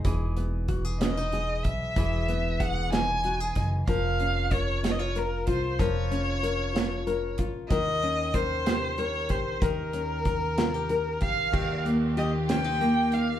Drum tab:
CC |------|------|------|------|
HH |xxxxxx|xxxxxx|xxxxxx|xxxxxx|
SD |---o--|---o--|---o--|---o--|
BD |o-o--o|o-o--o|o-o--o|o----o|

CC |------|------|x-----|
HH |xxxxxx|xxxxxx|-xxxxx|
SD |---o--|---o--|---o--|
BD |o-o--o|o-o--o|o-----|